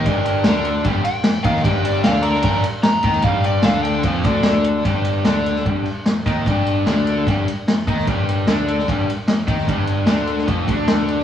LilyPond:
<<
  \new Staff \with { instrumentName = "Electric slide guitar" } { \time 4/4 \key g \minor \tempo 4 = 150 bes'4 bes'8 r4 g''4 f''8 | g''8 d''8 f''8 bes'4 r8 bes''4 | f''8 d''8 f''8 g''8 r2 | r1 |
r1 | r1 | r1 | }
  \new Staff \with { instrumentName = "Overdriven electric guitar" } { \clef bass \time 4/4 \key g \minor <g, g>4 <d d'>4 <g, g>8 r4 <ees ees'>8 | <g, g>4 <d d'>4 <g, g>8 r4 <ees ees'>8 | <g, g>4 <d d'>4 <f, f>8 <d d'>4. | <g, g>4 <d d'>4 <g, g>8 r4 <ees ees'>8 |
<g, g>4 <d d'>4 <g, g>8 r4 <ees ees'>8 | <g, g>4 <d d'>4 <g, g>8 r4 <ees ees'>8 | <g, g>4 <d d'>4 <f, f>8 <d d'>4. | }
  \new Staff \with { instrumentName = "Picked electric bass" } { \clef bass \time 4/4 \key g \minor g,,4 d,4 g,,8 r4 ees,8 | g,,4 d,4 g,,8 r4 ees,8 | g,,4 d,4 f,,8 d,4. | g,,4 d,4 g,,8 r4 ees,8 |
g,,4 d,4 g,,8 r4 ees,8 | g,,4 d,4 g,,8 r4 ees,8 | g,,4 d,4 f,,8 d,4. | }
  \new DrumStaff \with { instrumentName = "Drums" } \drummode { \time 4/4 <bd cymr>8 cymr8 <cymr sn>8 cymr8 <bd cymr>8 cymr8 <cymr sn>8 <bd cymr>16 sn16 | <bd cymr>8 cymr8 <cymr sn>8 cymr16 sn16 <bd cymr>8 cymr8 <cymr sn>8 <bd cymr>16 sn16 | <bd cymr>8 cymr8 <cymr sn>8 cymr8 <bd cymr>8 <bd cymr>8 <cymr sn>8 cymr8 | <bd cymr>8 cymr8 <cymr sn>8 cymr16 sn16 <bd cymr>8 cymr8 <cymr sn>8 <bd cymr>8 |
<bd cymr>8 cymr8 <cymr sn>8 cymr8 <bd cymr>8 cymr8 <cymr sn>8 <bd cymr>16 sn16 | <bd cymr>8 cymr8 <cymr sn>8 cymr16 sn16 <bd cymr>8 cymr8 <cymr sn>8 <bd cymr>16 sn16 | <bd cymr>8 cymr8 <cymr sn>8 cymr16 sn16 <bd cymr>8 <bd cymr>8 <cymr sn>8 cymr16 sn16 | }
>>